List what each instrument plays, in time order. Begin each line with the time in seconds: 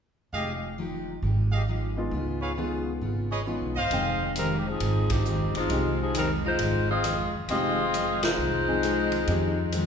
0.33 upright bass F1, steel-string acoustic guitar F3 G#3 D#4 G4, trumpet section G4 G#4 D#5 F5
0.78 steel-string acoustic guitar F3 G#3 D#4 G4
1.22 upright bass G#1, steel-string acoustic guitar F3 G#3 D#4 G4
1.51 trumpet section G4 G#4 D#5 F5
1.68 steel-string acoustic guitar F3 G#3 D#4 G4
1.97 grand piano G#3 B3 D#4 F4
2.11 upright bass C#2, steel-string acoustic guitar C#3 B3 F4 G#4
2.41 trumpet section G#4 B4 C#5 F5
2.57 steel-string acoustic guitar C#3 B3 F4 G#4, grand piano G#3 B3 D#4 F4
3.01 upright bass G#1, steel-string acoustic guitar C#3 B3 F4 G#4
3.30 trumpet section G#4 B4 C#5 D#5
3.47 steel-string acoustic guitar C#3 B3 F4 G#4, grand piano G#3 B3 D#4 F4
3.61 upright bass B1
3.75 upright bass G1, trumpet section C5 D#5 F5
3.91 upright bass F1, steel-string acoustic guitar F2 D#3 G#3 C4, grand piano G#3 C4 D#4 G5, ride
4.36 steel-string acoustic guitar F2 D#3 G#3 C4, saxophone section G3 C4 D#4 A#4, hi-hat pedal, ride
4.56 saxophone section G4
4.67 saxophone section F3 C4 D#4 G#4
4.80 upright bass G#1, steel-string acoustic guitar F2 D#3 G#3 C4, ride
5.10 saxophone section F3 C4 D#4 G4, kick, ride
5.25 steel-string acoustic guitar F2 D#3 G#3 C4, hi-hat pedal
5.54 upright bass G1, saxophone section G#3 C4 D#4 F4, ride
5.69 upright bass C2, steel-string acoustic guitar F2 D#3 G#3 C4, grand piano G#3 C4 D#4 G4, ride
6.02 saxophone section F3 C4 D#4 G#4
6.14 steel-string acoustic guitar F2 D#3 G#3 C4, saxophone section G3 C4 D#4 A#4, hi-hat pedal, ride
6.46 saxophone section G#3 D#4 F4 C5
6.58 upright bass G#1, steel-string acoustic guitar F2 D#3 G#3 C4, ride
6.90 saxophone section C4 F4 G#4 D#5
7.04 steel-string acoustic guitar F2 D#3 G#3 C4, cross-stick, hi-hat pedal, ride
7.33 muted upright bass stroke
7.48 upright bass F1, steel-string acoustic guitar F2 D#3 G#3 C4, grand piano G#3 C4 D#4 G4, saxophone section C4 F4 G#4 D#5, ride
7.93 steel-string acoustic guitar F2 D#3 G#3 C4, hi-hat pedal, ride
8.23 saxophone section G#3 D#4 F4 C5, snare, ride
8.38 upright bass C2, steel-string acoustic guitar F2 D#3 G#3 C4
8.68 grand piano G#3 C4 D#4 G#4
8.83 steel-string acoustic guitar F2 D#3 G#3 C4, cross-stick, hi-hat pedal, ride
9.12 ride
9.27 upright bass F2, steel-string acoustic guitar F2 D#3 G#3 C4, grand piano G#3 C4 D#4 G4, ride
9.72 steel-string acoustic guitar F2 D#3 G#3 C4, hi-hat pedal, ride